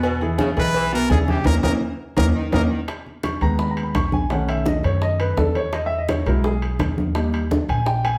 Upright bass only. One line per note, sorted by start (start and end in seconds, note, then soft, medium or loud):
0.00 0.51 E2 medium
0.57 1.07 B1 loud
1.10 1.43 D#2 loud
1.46 1.59 D#2 loud
1.63 1.77 D#2 loud
2.17 2.30 D#2 loud
2.52 2.66 D#2 loud
3.41 3.91 D#2 medium
3.94 4.78 B1 medium
4.84 5.34 F#2 medium
5.37 6.21 E2 medium
6.26 6.76 B1 loud
6.79 7.63 D#2 medium
7.69 8.18 A#1 medium